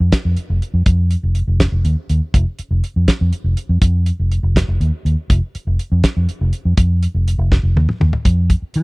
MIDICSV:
0, 0, Header, 1, 4, 480
1, 0, Start_track
1, 0, Tempo, 492611
1, 842, Time_signature, 6, 3, 24, 8
1, 8605, End_track
2, 0, Start_track
2, 0, Title_t, "Fingered electric bass"
2, 0, Program_c, 0, 33
2, 4, Note_on_c, 0, 41, 78
2, 95, Note_off_c, 0, 41, 0
2, 245, Note_on_c, 0, 41, 74
2, 336, Note_off_c, 0, 41, 0
2, 485, Note_on_c, 0, 29, 86
2, 576, Note_off_c, 0, 29, 0
2, 718, Note_on_c, 0, 41, 75
2, 811, Note_off_c, 0, 41, 0
2, 839, Note_on_c, 0, 41, 86
2, 1115, Note_off_c, 0, 41, 0
2, 1202, Note_on_c, 0, 29, 72
2, 1386, Note_off_c, 0, 29, 0
2, 1438, Note_on_c, 0, 29, 81
2, 1623, Note_off_c, 0, 29, 0
2, 1677, Note_on_c, 0, 29, 75
2, 1771, Note_off_c, 0, 29, 0
2, 1800, Note_on_c, 0, 39, 84
2, 1893, Note_off_c, 0, 39, 0
2, 2043, Note_on_c, 0, 39, 76
2, 2135, Note_off_c, 0, 39, 0
2, 2279, Note_on_c, 0, 29, 91
2, 2372, Note_off_c, 0, 29, 0
2, 2637, Note_on_c, 0, 29, 69
2, 2731, Note_off_c, 0, 29, 0
2, 2885, Note_on_c, 0, 41, 67
2, 2976, Note_off_c, 0, 41, 0
2, 3129, Note_on_c, 0, 41, 76
2, 3218, Note_off_c, 0, 41, 0
2, 3354, Note_on_c, 0, 29, 82
2, 3449, Note_off_c, 0, 29, 0
2, 3599, Note_on_c, 0, 41, 74
2, 3692, Note_off_c, 0, 41, 0
2, 3719, Note_on_c, 0, 41, 89
2, 3995, Note_off_c, 0, 41, 0
2, 4088, Note_on_c, 0, 29, 69
2, 4269, Note_off_c, 0, 29, 0
2, 4318, Note_on_c, 0, 29, 78
2, 4503, Note_off_c, 0, 29, 0
2, 4564, Note_on_c, 0, 29, 74
2, 4655, Note_off_c, 0, 29, 0
2, 4683, Note_on_c, 0, 39, 87
2, 4774, Note_off_c, 0, 39, 0
2, 4922, Note_on_c, 0, 39, 76
2, 5014, Note_off_c, 0, 39, 0
2, 5161, Note_on_c, 0, 29, 93
2, 5253, Note_off_c, 0, 29, 0
2, 5524, Note_on_c, 0, 29, 71
2, 5615, Note_off_c, 0, 29, 0
2, 5765, Note_on_c, 0, 41, 74
2, 5856, Note_off_c, 0, 41, 0
2, 6009, Note_on_c, 0, 41, 77
2, 6098, Note_off_c, 0, 41, 0
2, 6247, Note_on_c, 0, 29, 86
2, 6337, Note_off_c, 0, 29, 0
2, 6483, Note_on_c, 0, 41, 71
2, 6575, Note_off_c, 0, 41, 0
2, 6601, Note_on_c, 0, 41, 87
2, 6877, Note_off_c, 0, 41, 0
2, 6962, Note_on_c, 0, 29, 69
2, 7146, Note_off_c, 0, 29, 0
2, 7195, Note_on_c, 0, 29, 80
2, 7382, Note_off_c, 0, 29, 0
2, 7437, Note_on_c, 0, 29, 77
2, 7532, Note_off_c, 0, 29, 0
2, 7563, Note_on_c, 0, 39, 82
2, 7655, Note_off_c, 0, 39, 0
2, 7799, Note_on_c, 0, 39, 74
2, 7893, Note_off_c, 0, 39, 0
2, 8039, Note_on_c, 0, 41, 95
2, 8317, Note_off_c, 0, 41, 0
2, 8532, Note_on_c, 0, 53, 77
2, 8605, Note_off_c, 0, 53, 0
2, 8605, End_track
3, 0, Start_track
3, 0, Title_t, "Muted fingered electric bass strokes"
3, 367, Note_on_c, 9, 29, 34
3, 464, Note_off_c, 9, 29, 0
3, 2526, Note_on_c, 9, 29, 32
3, 2623, Note_off_c, 9, 29, 0
3, 3242, Note_on_c, 9, 29, 33
3, 3340, Note_off_c, 9, 29, 0
3, 5410, Note_on_c, 9, 29, 33
3, 5508, Note_off_c, 9, 29, 0
3, 6132, Note_on_c, 9, 29, 33
3, 6229, Note_off_c, 9, 29, 0
3, 8402, Note_on_c, 9, 29, 30
3, 8499, Note_off_c, 9, 29, 0
3, 8605, End_track
4, 0, Start_track
4, 0, Title_t, "Drums"
4, 119, Note_on_c, 9, 42, 71
4, 122, Note_on_c, 9, 38, 101
4, 123, Note_on_c, 9, 36, 75
4, 217, Note_off_c, 9, 42, 0
4, 219, Note_off_c, 9, 38, 0
4, 220, Note_off_c, 9, 36, 0
4, 356, Note_on_c, 9, 42, 48
4, 454, Note_off_c, 9, 42, 0
4, 606, Note_on_c, 9, 42, 54
4, 703, Note_off_c, 9, 42, 0
4, 837, Note_on_c, 9, 42, 74
4, 840, Note_on_c, 9, 36, 98
4, 934, Note_off_c, 9, 42, 0
4, 938, Note_off_c, 9, 36, 0
4, 1078, Note_on_c, 9, 42, 50
4, 1175, Note_off_c, 9, 42, 0
4, 1314, Note_on_c, 9, 42, 49
4, 1412, Note_off_c, 9, 42, 0
4, 1558, Note_on_c, 9, 42, 73
4, 1559, Note_on_c, 9, 36, 69
4, 1561, Note_on_c, 9, 38, 102
4, 1656, Note_off_c, 9, 36, 0
4, 1656, Note_off_c, 9, 42, 0
4, 1659, Note_off_c, 9, 38, 0
4, 1800, Note_on_c, 9, 42, 56
4, 1897, Note_off_c, 9, 42, 0
4, 2041, Note_on_c, 9, 42, 59
4, 2139, Note_off_c, 9, 42, 0
4, 2281, Note_on_c, 9, 36, 96
4, 2285, Note_on_c, 9, 42, 76
4, 2378, Note_off_c, 9, 36, 0
4, 2383, Note_off_c, 9, 42, 0
4, 2520, Note_on_c, 9, 42, 56
4, 2617, Note_off_c, 9, 42, 0
4, 2765, Note_on_c, 9, 42, 59
4, 2862, Note_off_c, 9, 42, 0
4, 3000, Note_on_c, 9, 36, 72
4, 3000, Note_on_c, 9, 42, 76
4, 3003, Note_on_c, 9, 38, 97
4, 3097, Note_off_c, 9, 36, 0
4, 3098, Note_off_c, 9, 42, 0
4, 3100, Note_off_c, 9, 38, 0
4, 3241, Note_on_c, 9, 42, 56
4, 3338, Note_off_c, 9, 42, 0
4, 3479, Note_on_c, 9, 42, 59
4, 3576, Note_off_c, 9, 42, 0
4, 3718, Note_on_c, 9, 42, 77
4, 3719, Note_on_c, 9, 36, 98
4, 3816, Note_off_c, 9, 42, 0
4, 3817, Note_off_c, 9, 36, 0
4, 3957, Note_on_c, 9, 42, 57
4, 4055, Note_off_c, 9, 42, 0
4, 4205, Note_on_c, 9, 42, 51
4, 4303, Note_off_c, 9, 42, 0
4, 4444, Note_on_c, 9, 36, 73
4, 4449, Note_on_c, 9, 42, 77
4, 4452, Note_on_c, 9, 38, 98
4, 4541, Note_off_c, 9, 36, 0
4, 4546, Note_off_c, 9, 42, 0
4, 4549, Note_off_c, 9, 38, 0
4, 4687, Note_on_c, 9, 42, 52
4, 4784, Note_off_c, 9, 42, 0
4, 4930, Note_on_c, 9, 42, 53
4, 5027, Note_off_c, 9, 42, 0
4, 5163, Note_on_c, 9, 42, 73
4, 5164, Note_on_c, 9, 36, 104
4, 5260, Note_off_c, 9, 42, 0
4, 5261, Note_off_c, 9, 36, 0
4, 5407, Note_on_c, 9, 42, 50
4, 5504, Note_off_c, 9, 42, 0
4, 5645, Note_on_c, 9, 42, 57
4, 5742, Note_off_c, 9, 42, 0
4, 5881, Note_on_c, 9, 42, 78
4, 5883, Note_on_c, 9, 36, 75
4, 5884, Note_on_c, 9, 38, 105
4, 5979, Note_off_c, 9, 42, 0
4, 5981, Note_off_c, 9, 36, 0
4, 5982, Note_off_c, 9, 38, 0
4, 6126, Note_on_c, 9, 42, 55
4, 6224, Note_off_c, 9, 42, 0
4, 6361, Note_on_c, 9, 42, 58
4, 6458, Note_off_c, 9, 42, 0
4, 6600, Note_on_c, 9, 42, 76
4, 6602, Note_on_c, 9, 36, 99
4, 6697, Note_off_c, 9, 42, 0
4, 6700, Note_off_c, 9, 36, 0
4, 6846, Note_on_c, 9, 42, 61
4, 6944, Note_off_c, 9, 42, 0
4, 7090, Note_on_c, 9, 42, 60
4, 7188, Note_off_c, 9, 42, 0
4, 7325, Note_on_c, 9, 36, 73
4, 7328, Note_on_c, 9, 38, 51
4, 7422, Note_off_c, 9, 36, 0
4, 7425, Note_off_c, 9, 38, 0
4, 7570, Note_on_c, 9, 48, 69
4, 7667, Note_off_c, 9, 48, 0
4, 7686, Note_on_c, 9, 47, 64
4, 7784, Note_off_c, 9, 47, 0
4, 7806, Note_on_c, 9, 45, 86
4, 7903, Note_off_c, 9, 45, 0
4, 7923, Note_on_c, 9, 43, 72
4, 8020, Note_off_c, 9, 43, 0
4, 8040, Note_on_c, 9, 42, 67
4, 8041, Note_on_c, 9, 36, 95
4, 8137, Note_off_c, 9, 42, 0
4, 8139, Note_off_c, 9, 36, 0
4, 8280, Note_on_c, 9, 42, 49
4, 8281, Note_on_c, 9, 36, 68
4, 8378, Note_off_c, 9, 36, 0
4, 8378, Note_off_c, 9, 42, 0
4, 8517, Note_on_c, 9, 42, 50
4, 8605, Note_off_c, 9, 42, 0
4, 8605, End_track
0, 0, End_of_file